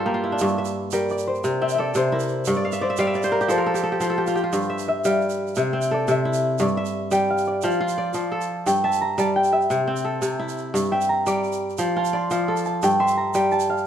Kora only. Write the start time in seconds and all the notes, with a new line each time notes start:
Already playing: G2 F4 A4 C5 D5
0.06 A#3 G4
0.14 F4
0.24 E4
0.32 D4
0.41 G2
0.58 E5
0.93 G3
1.44 C3
1.62 C4
1.78 A4
1.95 C3
2.12 E4
2.47 G2
2.56 D5
2.65 F5
2.73 E5
2.81 D5
2.90 E5
2.99 G3 F5
3.07 E5
3.15 D5
3.24 C5
3.32 A#4
3.41 G4
3.48 F3 A4
3.58 A#4
3.66 A4
3.74 G4
3.83 A4
3.92 G4
4.00 F3 F4
4.10 A4
4.18 G4
4.27 F4
4.35 G4
4.44 F4
4.53 G2
4.70 E5
5.05 G3
5.57 C3
5.73 C4
5.91 A4
6.08 C3
6.25 E4
6.60 G2
6.77 E5
7.11 G3
7.63 F3
7.80 F4
7.98 D5
8.14 F3
8.32 A4
8.66 G2
8.84 E5
9.18 G3
9.70 C3
9.87 C4
10.05 A4
10.22 C3
10.39 E4
10.74 G2
10.92 E5
11.27 G3
11.79 F3
11.96 F4
12.13 D5
12.31 F3
12.48 A4
12.83 G2
13.00 E5
13.35 G3